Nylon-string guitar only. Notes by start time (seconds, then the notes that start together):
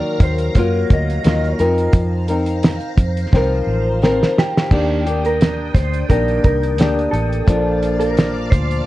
Already playing: D#3 F#3 A#3 F4
0.56 F#3 A#3 F4
1.24 D#3 F#3 A#3 F4
1.60 F3 C4 D#4 A#4
2.29 C4 D#4 A#4
3.33 F3 C4 D#4 A#4
4.02 F3 C4 D#4 A#4
4.71 D#3 A#3 D4 G4
5.06 A#3 D4 G4
6.08 D#3 A#3 D4 G4
6.79 A#3 D4 G4
7.47 A#2 F3 D4